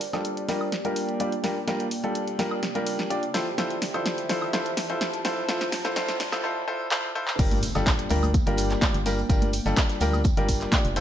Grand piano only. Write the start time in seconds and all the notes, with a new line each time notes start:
0.13 G3 D4 F4 G4 A4
0.49 G3 D4 F4 G4 A#4
0.85 G3 D4 F4 G4 A#4
1.20 G3 D4 F4 G4 D5
1.44 G3 D4 F4 G4 A#4
1.67 G3 D4 F4 G4 A#4
2.04 G3 D4 F4 G4 A4
2.39 G3 D4 F4 G4 A#4
2.75 G3 D4 F4 G4 A#4
3.10 D4 F4 G4 D5
3.34 F3 E4 F4 A4 C5
3.58 F3 E4 F4 A4 C5
3.94 F3 E4 F4 A4 C5
4.30 F3 E4 F4 A4 C5
4.53 F3 E4 F4 A4 C5
4.90 F3 E4 F4 A4 C5
5.25 F3 E4 F4 A4 C5
5.49 F3 E4 F4 A4 C5
5.85 F3 E4 F4 A4 C5
5.96 F3 E4 F4 A4 C5
6.32 F3 E4 F4 A4 C5
6.44 F3 E4 F4 A4 C5
6.67 F3 E4 F4 A4 C5
6.91 F3 E4 F4 A4 C5
7.15 F3 E4 F4 A4 C5
7.39 G3 D4 F4 G4 A#4
7.75 G3 D4 F4 G4 A4
8.10 G3 D4 F4 G4 A#4
8.47 G3 D4 F4 G4 A#4
8.82 G3 D4 F4 G4 D5
9.06 G3 D4 F4 G4 A#4
9.30 G3 D4 F4 G4 A#4
9.66 G3 D4 F4 G4 A4
10.01 G3 D4 F4 G4 A#4
10.37 G3 D4 F4 G4 A#4
10.73 D4 F4 G4 D5
10.96 F3 E4 F4 A4 C5